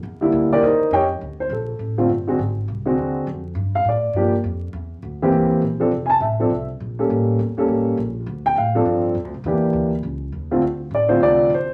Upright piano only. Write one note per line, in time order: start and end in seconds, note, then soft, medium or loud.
0.21 0.60 D3 medium
0.21 0.60 G3 medium
0.21 0.60 A#3 soft
0.21 0.60 E4 medium
0.53 0.63 D4 medium
0.53 0.63 G4 medium
0.53 0.62 A#4 medium
0.53 0.63 D5 medium
0.63 0.90 D#4 medium
0.63 0.90 A#4 medium
0.63 0.90 C5 soft
0.63 0.90 D#5 medium
0.93 1.04 G4 medium
0.93 1.04 C#5 medium
0.93 1.03 D#5 medium
0.93 1.03 G5 medium
1.40 1.51 C5 medium
1.52 1.95 A4 soft
1.98 2.08 D3 medium
1.98 2.08 A3 soft
1.98 2.08 C4 soft
1.98 2.08 F4 medium
2.27 2.38 D3 medium
2.27 2.38 G#3 medium
2.27 2.38 C4 soft
2.27 2.38 F#4 medium
2.86 3.24 D3 medium
2.86 3.25 G#3 medium
2.86 3.25 C4 soft
2.86 3.25 F#4 medium
3.75 3.86 F5 medium
3.89 4.31 D5 soft
4.16 4.32 F3 medium
4.16 4.32 A#3 medium
4.16 4.32 D4 soft
4.16 4.32 G4 medium
5.22 5.61 E3 medium
5.22 5.60 A#3 medium
5.22 5.61 C4 medium
5.22 5.61 G4 medium
5.80 5.90 F3 medium
5.80 5.91 C4 medium
5.80 5.91 D4 medium
5.80 5.91 A4 medium
6.06 6.08 G#5 medium
6.06 6.21 A5 medium
6.21 6.65 E5 soft
6.40 6.50 F3 medium
6.40 6.50 C4 soft
6.40 6.50 D4 soft
6.40 6.50 A4 medium
6.99 7.37 G3 medium
6.99 7.37 A#3 soft
6.99 7.37 C#4 soft
6.99 7.37 A4 medium
7.57 7.96 G3 medium
7.57 7.96 A#3 medium
7.57 7.96 C#4 soft
7.57 7.96 A4 medium
8.46 8.57 G5 medium
8.58 9.01 F5 medium
8.75 9.13 F3 medium
8.75 9.14 C4 medium
8.75 9.14 D4 soft
8.75 9.13 A4 medium
9.46 9.89 E3 medium
9.46 9.89 A#3 soft
9.46 9.89 D4 soft
9.46 9.89 G4 medium
10.51 10.62 D3 medium
10.51 10.62 A3 medium
10.51 10.62 C4 medium
10.51 10.62 F4 medium
10.95 11.10 D5 medium
11.09 11.48 D3 medium
11.09 11.48 A3 medium
11.09 11.48 C4 medium
11.09 11.48 F4 medium
11.09 11.20 C5 medium
11.23 11.49 D5 medium
11.54 11.74 C5 medium